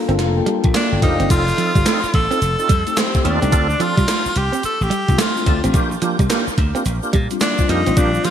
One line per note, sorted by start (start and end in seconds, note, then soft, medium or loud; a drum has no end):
0.00 0.09 A#3 loud
0.00 0.10 D4 medium
0.00 0.10 F4 medium
0.00 0.10 A4 loud
0.00 0.17 A#5 medium
0.09 0.19 G1 medium
0.09 0.71 A#3 medium
0.09 0.17 C4 medium
0.09 0.72 D4 medium
0.09 0.72 F4 medium
0.09 0.48 A4 medium
0.09 closed hi-hat soft
0.19 0.40 F1 medium
0.19 0.36 A5 medium
0.19 snare medium
0.19 closed hi-hat medium
0.37 0.46 G5 medium
0.46 0.60 G3 medium
0.46 closed hi-hat medium
0.64 0.72 A#1 medium
0.64 kick medium
0.64 closed hi-hat medium
0.74 0.88 A#3 medium
0.74 1.01 D4 medium
0.74 1.01 F5 medium
0.74 snare loud
0.74 clap medium
0.74 closed hi-hat medium
0.92 1.00 G1 medium
0.92 1.02 D5 medium
0.92 1.02 G5 medium
1.02 1.15 F1 medium
1.02 1.17 A#3 medium
1.02 1.18 D4 medium
1.02 1.29 D#4 medium
1.02 1.18 F4 medium
1.02 1.18 G4 medium
1.02 1.19 C5 medium
1.02 1.28 D#5 medium
1.02 1.19 F5 medium
1.02 muted clean electric guitar stroke soft
1.02 kick loud
1.02 closed hi-hat medium
1.20 1.28 G1 medium
1.20 1.28 C4 medium
1.20 1.47 A4 medium
1.20 1.47 D5 medium
1.20 closed hi-hat medium
1.30 1.51 F1 loud
1.30 1.45 C4 medium
1.30 1.45 D#4 medium
1.30 1.45 F4 medium
1.30 2.10 F4 loud
1.30 1.46 A4 loud
1.30 kick loud
1.30 closed hi-hat medium
1.30 crash medium
1.30 shaker medium
1.48 muted clean electric guitar stroke soft
1.48 shaker soft
1.58 1.71 F3 medium
1.58 1.73 C4 medium
1.58 1.73 D#4 medium
1.58 1.73 F4 medium
1.58 1.74 A4 medium
1.58 closed hi-hat medium
1.58 shaker soft
1.75 1.83 G1 medium
1.75 1.83 G3 medium
1.75 kick medium
1.75 closed hi-hat soft
1.75 shaker soft
1.86 1.99 A3 medium
1.86 2.01 C4 medium
1.86 2.01 D#4 medium
1.86 2.01 F4 medium
1.86 2.01 A4 medium
1.86 snare loud
1.86 clap medium
1.86 closed hi-hat medium
1.86 shaker medium
2.03 muted clean electric guitar stroke soft
2.03 muted slap bass stroke soft
2.03 shaker medium
2.14 2.27 A1 medium
2.14 3.00 A4 loud
2.14 kick medium
2.14 closed hi-hat medium
2.31 2.39 C4 medium
2.31 2.40 C4 medium
2.31 2.40 D#4 medium
2.31 2.40 F4 medium
2.31 2.40 A4 medium
2.31 closed hi-hat soft
2.31 shaker medium
2.42 2.55 F1 medium
2.42 closed hi-hat medium
2.42 shaker medium
2.59 2.68 C4 medium
2.59 2.68 D#4 medium
2.59 2.68 F4 medium
2.59 2.68 A4 medium
2.59 shaker medium
2.69 2.83 F2 loud
2.69 2.82 G3 medium
2.69 kick medium
2.69 closed hi-hat medium
2.69 shaker soft
2.86 3.12 A3 medium
2.86 3.12 C4 medium
2.86 3.12 D#4 medium
2.86 3.13 G4 medium
2.86 closed hi-hat medium
2.86 shaker soft
2.97 3.10 A3 medium
2.97 3.25 C4 medium
2.97 snare loud
2.97 clap medium
2.97 closed hi-hat medium
2.97 shaker medium
3.14 3.40 A3 medium
3.14 3.40 C4 medium
3.14 3.40 D#4 medium
3.14 3.41 G4 medium
3.14 kick medium
3.14 shaker soft
3.24 3.38 D#2 medium
3.24 3.40 C4 medium
3.24 3.84 D4 medium
3.24 3.40 D#4 medium
3.24 3.40 F4 medium
3.24 3.40 A4 medium
3.24 muted clean electric guitar stroke soft
3.24 closed hi-hat medium
3.41 3.53 C2 loud
3.41 3.52 A3 medium
3.41 3.52 C4 medium
3.41 3.50 C4 medium
3.41 3.52 D#4 medium
3.41 3.53 G4 medium
3.41 closed hi-hat medium
3.41 shaker soft
3.52 3.73 D2 loud
3.52 3.67 C4 medium
3.52 3.68 D4 medium
3.52 3.68 F4 medium
3.52 3.68 A4 loud
3.52 kick loud
3.52 closed hi-hat medium
3.52 shaker medium
3.70 muted clean electric guitar stroke soft
3.70 shaker soft
3.80 3.93 F3 medium
3.80 3.95 C4 medium
3.80 3.95 D4 medium
3.80 3.95 F4 medium
3.80 4.39 F4 loud
3.80 3.96 A4 medium
3.80 closed hi-hat medium
3.80 shaker soft
3.97 4.05 C2 medium
3.97 4.05 G3 medium
3.97 kick medium
3.97 closed hi-hat soft
3.97 shaker soft
4.08 4.21 A3 medium
4.08 snare loud
4.08 clap medium
4.08 closed hi-hat medium
4.08 shaker medium
4.25 muted clean electric guitar stroke soft
4.25 muted slap bass stroke soft
4.25 shaker medium
4.36 4.49 C2 medium
4.36 4.64 G4 medium
4.36 closed hi-hat medium
4.52 4.61 C4 medium
4.52 closed hi-hat soft
4.52 shaker medium
4.63 4.85 A4 medium
4.63 muted slap bass stroke soft
4.63 closed hi-hat medium
4.63 shaker medium
4.81 4.89 A1 medium
4.81 5.20 G4 medium
4.81 shaker medium
4.90 5.04 G3 medium
4.90 closed hi-hat medium
4.90 shaker soft
5.08 5.16 C2 medium
5.08 5.34 A3 medium
5.08 5.34 C4 medium
5.08 5.35 D4 medium
5.08 5.35 F4 medium
5.08 kick medium
5.08 closed hi-hat soft
5.08 shaker soft
5.18 5.32 A3 medium
5.18 5.62 F4 medium
5.18 snare loud
5.18 clap medium
5.18 closed hi-hat medium
5.18 shaker medium
5.36 5.62 A3 medium
5.36 5.62 C4 medium
5.36 5.62 D4 medium
5.36 5.62 F4 medium
5.36 shaker medium
5.46 5.60 D2 loud
5.46 5.62 C4 medium
5.46 5.62 D4 medium
5.46 5.62 F4 medium
5.46 5.62 A4 medium
5.46 muted clean electric guitar stroke soft
5.46 kick loud
5.46 closed hi-hat medium
5.64 5.72 A1 loud
5.64 5.74 A3 medium
5.64 5.74 C4 medium
5.64 5.72 C4 medium
5.64 5.75 D4 medium
5.64 5.75 G4 medium
5.64 closed hi-hat medium
5.64 shaker soft
5.74 5.95 A#1 loud
5.74 5.90 A#3 medium
5.74 5.90 D4 medium
5.74 5.90 F4 medium
5.74 5.90 G4 loud
5.74 kick loud
5.74 closed hi-hat medium
5.74 shaker medium
5.91 muted clean electric guitar stroke soft
5.91 shaker soft
6.02 6.15 F3 medium
6.02 6.17 A#3 medium
6.02 6.17 D4 medium
6.02 6.17 F4 medium
6.02 6.18 G4 medium
6.02 closed hi-hat medium
6.02 shaker soft
6.19 6.27 C2 medium
6.19 6.27 G3 medium
6.19 kick medium
6.19 closed hi-hat soft
6.19 shaker soft
6.30 6.45 A#3 medium
6.30 6.43 A#3 medium
6.30 6.45 D4 medium
6.30 6.46 F4 medium
6.30 6.46 G4 medium
6.30 snare loud
6.30 clap medium
6.30 closed hi-hat medium
6.30 shaker medium
6.47 muted slap bass stroke soft
6.47 muted clean electric guitar stroke soft
6.47 shaker medium
6.58 6.71 D2 medium
6.58 kick medium
6.58 closed hi-hat medium
6.75 6.84 A#3 medium
6.75 6.83 C4 medium
6.75 6.84 D4 medium
6.75 6.84 F4 medium
6.75 6.84 G4 medium
6.75 closed hi-hat soft
6.75 shaker medium
6.85 6.99 A#1 medium
6.85 closed hi-hat medium
6.85 shaker medium
7.03 7.12 A#3 medium
7.03 7.12 D4 medium
7.03 7.12 F4 medium
7.03 7.12 G4 medium
7.03 shaker soft
7.13 7.27 A#2 loud
7.13 7.27 G3 medium
7.13 kick medium
7.13 closed hi-hat medium
7.13 shaker soft
7.30 7.56 G3 medium
7.30 7.56 C4 medium
7.30 7.57 D4 medium
7.30 7.57 F4 medium
7.30 closed hi-hat medium
7.30 shaker soft
7.40 7.54 A#3 medium
7.40 7.71 D4 medium
7.40 snare loud
7.40 clap medium
7.40 closed hi-hat medium
7.40 shaker medium
7.58 7.84 G3 medium
7.58 7.84 C4 medium
7.58 7.84 D4 medium
7.58 7.85 F4 medium
7.58 kick loud
7.58 shaker medium
7.69 7.82 F2 loud
7.69 7.84 A#3 medium
7.69 7.84 D4 medium
7.69 7.99 D#4 medium
7.69 7.84 F4 medium
7.69 7.84 G4 medium
7.69 muted clean electric guitar stroke soft
7.69 closed hi-hat medium
7.86 7.94 A1 medium
7.86 8.30 G3 medium
7.86 8.30 C4 medium
7.86 7.94 C4 medium
7.86 8.30 D4 medium
7.86 8.30 F4 medium
7.86 closed hi-hat medium
7.86 shaker soft
7.96 8.18 A#1 loud
7.96 8.12 A#3 loud
7.96 8.12 D4 medium
7.96 8.26 D4 medium
7.96 8.12 F4 medium
7.96 8.12 G4 loud
7.96 kick loud
7.96 closed hi-hat medium
7.96 shaker medium
8.14 muted clean electric guitar stroke soft
8.14 shaker soft
8.24 8.30 F3 medium
8.24 8.30 A#3 medium
8.24 8.30 D4 medium
8.24 8.30 F4 loud
8.24 8.30 F4 medium
8.24 8.30 G4 medium
8.24 closed hi-hat medium
8.24 shaker soft